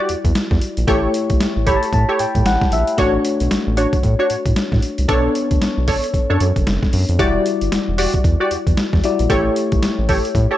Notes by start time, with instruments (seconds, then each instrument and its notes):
Already playing: fm electric piano G3 E4 F#4 D5
0.00 analog polysynth F#4 G4 D5
0.09 analog synth bass E2, closed hi-hat
0.25 analog synth bass E2, kick, closed hi-hat
0.35 snare, closed hi-hat
0.51 analog synth bass E2, kick, snare
0.61 closed hi-hat
0.77 analog synth bass A#1, closed hi-hat
0.87 analog synth bass A1, fm electric piano A3 E4 G4 C#5, analog polysynth G4 A4 C#5, kick, closed hi-hat
1.14 closed hi-hat
1.30 analog synth bass B1, kick, closed hi-hat
1.41 analog synth bass A1, snare, closed hi-hat
1.56 analog synth bass A1
1.66 analog polysynth G4 A4 C#5, fm electric piano B5, kick, closed hi-hat
1.76 fm electric piano A5
1.83 closed hi-hat
1.93 analog synth bass A2, fm electric piano A5, kick, closed hi-hat
2.09 analog polysynth G4 A4 C#5
2.19 analog synth bass A2, fm electric piano G5, closed hi-hat
2.35 analog synth bass A2, kick, closed hi-hat
2.46 analog synth bass A1, fm electric piano F#5, snare, closed hi-hat
2.62 kick, snare
2.72 analog synth bass A#1, fm electric piano E5, closed hi-hat
2.87 closed hi-hat
2.98 analog synth bass A1, fm electric piano A3 D4 F#4 C#5, analog polysynth D4 F#4 C#5, kick, closed hi-hat
3.25 closed hi-hat
3.40 analog synth bass B1, closed hi-hat
3.51 analog synth bass A1, snare, closed hi-hat
3.67 analog synth bass A1
3.77 analog polysynth D4 F#4 C#5, closed hi-hat
3.93 kick, closed hi-hat
4.03 analog synth bass A2, kick, closed hi-hat
4.19 analog polysynth D4 F#4 C#5
4.30 analog synth bass A2, closed hi-hat
4.46 analog synth bass A2, kick, closed hi-hat
4.56 snare, closed hi-hat
4.72 analog synth bass A2, kick, snare
4.82 closed hi-hat
4.98 analog synth bass C2, closed hi-hat
5.08 analog synth bass B1, fm electric piano B3 D4 A4 C#5, analog polysynth D4 A4 C#5, kick, closed hi-hat
5.35 closed hi-hat
5.51 analog synth bass D2, kick, closed hi-hat
5.62 analog synth bass B1, snare, closed hi-hat
5.78 analog synth bass B1
5.88 analog polysynth D4 A4 C#5, kick, open hi-hat
6.04 closed hi-hat
6.14 kick, closed hi-hat
6.30 analog synth bass F#2, analog polysynth D4 A4 C#5
6.40 analog synth bass F#2, closed hi-hat
6.56 analog synth bass F#1, kick, closed hi-hat
6.67 analog synth bass F#1, snare, closed hi-hat
6.83 kick, snare
6.93 analog synth bass F#2, open hi-hat
7.09 analog synth bass F2, closed hi-hat
7.19 analog synth bass E1, fm electric piano G3 E4 F#4 D5, analog polysynth F#4 G4 D5, kick, closed hi-hat
7.46 closed hi-hat
7.61 analog synth bass G1, closed hi-hat
7.72 analog synth bass E1, snare, closed hi-hat
7.88 analog synth bass E1
7.98 analog polysynth F#4 G4 D5, open hi-hat
8.14 kick, closed hi-hat
8.24 analog synth bass E2, kick, closed hi-hat
8.40 analog polysynth F#4 G4 D5
8.51 analog synth bass E2, closed hi-hat
8.67 analog synth bass E2, kick, closed hi-hat
8.77 snare, closed hi-hat
8.93 analog synth bass E2, kick, snare
9.04 fm electric piano G3 E4 F#4 D5, closed hi-hat
9.19 analog synth bass A#1, closed hi-hat
9.30 analog synth bass A1, fm electric piano A3 E4 G4 C#5, analog polysynth G4 A4 C#5, kick, closed hi-hat
9.56 closed hi-hat
9.72 analog synth bass B1, kick, closed hi-hat
9.83 analog synth bass A1, snare, closed hi-hat
9.99 analog synth bass A1
10.09 analog polysynth G4 A4 C#5, kick, open hi-hat
10.25 closed hi-hat
10.35 analog synth bass A2, kick, closed hi-hat
10.51 analog polysynth G4 A4 C#5